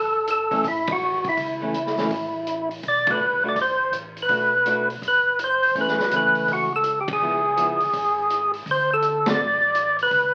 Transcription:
Already playing: F#1 A4
0.27 A4, closed hi-hat
0.51 E3 A3 C#4, kick, open hi-hat
0.64 A1, kick, open hi-hat
0.68 E4
0.87 kick, ride
0.92 F#4
1.01 G#1
1.24 kick, open hi-hat
1.29 E4
1.37 C#2, kick, open hi-hat
1.61 E3 A3 C#4
1.74 closed hi-hat
1.86 snare
1.97 E3 A3 C#4, snare, open hi-hat
2.11 A1, kick, open hi-hat
2.47 closed hi-hat
2.71 open hi-hat
2.83 B1, kick, open hi-hat
2.88 D5
3.07 A3 D4 F#4, kick, ride
3.11 B4
3.20 C2
3.44 A3 D4 F#4
3.49 D5
3.56 F#1, kick, open hi-hat
3.62 C5
3.92 A1, closed hi-hat
4.17 open hi-hat
4.22 B4
4.29 B1 A3 D4 F#4, kick, open hi-hat
4.65 A3 D4 F#4, closed hi-hat
4.90 open hi-hat
5.02 F#1, kick, open hi-hat
5.08 B4
5.39 closed hi-hat
5.44 C5
5.63 open hi-hat
5.75 F#1 E3 A3 C#4, kick, open hi-hat
5.81 B4
5.88 snare
6.00 snare
6.11 C#2 E3 A3 C#4, closed hi-hat
6.17 B4
6.35 open hi-hat
6.48 C#2, kick, open hi-hat
6.53 F#4
6.76 A4
6.84 closed hi-hat
7.01 G4
7.08 C#2, kick, ride
7.13 G#4
7.20 C#2 F3 B3 E4
7.56 F3 B3 E4, closed hi-hat
7.80 C#2, open hi-hat
7.93 G#1, kick, open hi-hat
8.30 closed hi-hat
8.54 open hi-hat
8.66 D2, kick, open hi-hat
8.71 C5
8.94 A4
9.02 closed hi-hat
9.26 D3 A3 C4 F#4 D5, snare, ride
9.38 A1
9.75 closed hi-hat
9.99 B4, open hi-hat
10.11 C#2, kick, open hi-hat

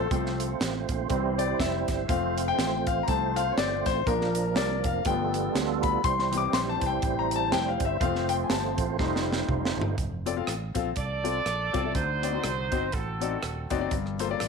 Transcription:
Already playing: A4
0.10 C2 F3 G#3 A3 C4 F4 A4 C5, kick, closed hi-hat
0.17 A3
0.26 snare
0.40 closed hi-hat
0.61 A1, snare, closed hi-hat
0.89 A#1, kick, closed hi-hat
1.09 C2 E3 G3 C4 E4 C5, kick, closed hi-hat
1.38 D5, closed hi-hat
1.59 F1 E5, kick, snare, closed hi-hat
1.88 G1, kick, snare, closed hi-hat
2.08 F1 F3 A3 C4 F4 C5 F5, kick, closed hi-hat
2.38 closed hi-hat
2.48 G5
2.59 A1, snare, closed hi-hat
2.87 F5, kick, closed hi-hat
3.03 A#5
3.08 C2 F3 A3 C4 A5, kick, closed hi-hat
3.36 F5, closed hi-hat
3.52 C#5
3.58 G1 D5, snare, closed hi-hat
3.86 A1 C5, kick, snare, closed hi-hat
4.06 A#1 F3 A#3 D4 A#4, kick, closed hi-hat
4.21 snare
4.35 closed hi-hat
4.56 C2 D5, snare, closed hi-hat
4.84 F1 F5, kick, closed hi-hat
5.05 G1 F3 G3 A3 B3 F4 A4 G5, kick, closed hi-hat
5.34 closed hi-hat
5.55 D2, snare, closed hi-hat
5.83 B5, kick, closed hi-hat
6.04 C2 G3 C4 E4 C5 C6, kick, closed hi-hat
6.19 C6, snare
6.31 E3 G3 C4, closed hi-hat
6.37 D6
6.53 A#1 C6, snare, closed hi-hat
6.69 A5
6.81 C2, kick, closed hi-hat
6.86 G5
7.02 A1, kick, closed hi-hat
7.19 A#5
7.31 closed hi-hat
7.36 A5
7.52 F1 G5, snare, closed hi-hat
7.69 F5
7.80 G1, kick, closed hi-hat
7.85 E5
8.00 F1 F3 A3 C4 F4 C5 F5, kick, closed hi-hat
8.15 snare
8.29 G5, closed hi-hat
8.44 G#5
8.50 G1 A5, snare, closed hi-hat
8.78 A1, kick, closed hi-hat
8.99 F1 G3 A3 D#4 F4 C5, kick, snare
9.16 snare
9.33 snare
9.49 F1, kick, mid tom
9.65 snare
9.77 G1
9.81 floor tom
9.98 F1, kick, closed hi-hat
10.26 C4 F4 A4 D5, closed hi-hat
10.36 C4 F4 A4 F5
10.47 A1, cross-stick, closed hi-hat
10.74 A#1 C4 F4 A4 F5, kick, closed hi-hat
10.96 C2 A4 D5, kick, closed hi-hat
11.24 C4 F4 A4 D5, closed hi-hat
11.46 A#1, cross-stick, closed hi-hat
11.73 C2 C4 F4 A4 D5, kick, closed hi-hat
11.83 C4 F4 A4 E5
11.95 D2 D3 D#4 F#4 C5, kick, closed hi-hat
12.22 C4 D#4 F#4 D5, closed hi-hat
12.32 C4 D#4 F#4 D5
12.44 C2, cross-stick, closed hi-hat
12.71 G1 C4 D#4 F#4 C5, kick, closed hi-hat
12.92 A1 C4 F#4 A4, kick, closed hi-hat
13.21 C4 D#4 F#4 D5, closed hi-hat
13.43 D#1, cross-stick, closed hi-hat
13.70 F#1 C4 D#4 F#4 D5, kick, closed hi-hat
13.80 C4 D#4 F#4 D5
13.91 G1 G2, kick, closed hi-hat
14.06 cross-stick
14.19 A#3 F4 A4 C5, closed hi-hat
14.30 A#3 F4 A4 D5
14.40 A1, cross-stick, closed hi-hat

